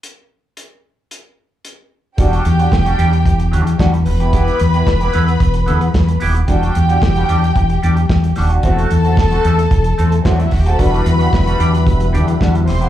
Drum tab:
HH |x---x---x---x---|xxxx-xxxxxxx-xox|xxxx-xxxxxxx-xox|xxxx-xxxxxxx-xox|
SD |----------------|----o-------o---|----o-------o---|----o-------o-o-|
BD |----------------|o---o---o---o---|o---o---o---o---|o---o---o---o---|

HH |xxxx-xxxxxxx-xox|xxxx-xxxxxxx-xox|
SD |----o-------o-o-|----o-------o-o-|
BD |o---o---o---o-o-|o---o---o---o---|